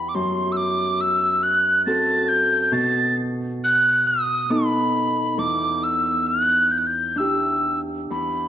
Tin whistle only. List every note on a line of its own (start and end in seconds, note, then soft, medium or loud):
0.00 0.10 B5 medium
0.09 0.16 D6 medium
0.15 0.54 C6 medium
0.52 0.58 E6 medium
0.57 1.02 D6 medium
1.01 1.44 E6 loud
1.43 1.85 F#6 medium
1.86 2.30 A6 loud
2.28 2.75 G6 loud
2.73 3.17 A6 loud
3.64 4.09 F#6 loud
4.07 4.53 D#6 medium
4.51 5.40 B5 medium
5.39 5.85 D6 medium
5.84 6.28 E6 medium
6.27 6.73 F#6 medium
6.71 6.80 G6 medium
6.78 6.88 F#6 medium
6.86 7.19 G6 medium
7.18 7.80 E6 medium
8.11 8.48 B5 medium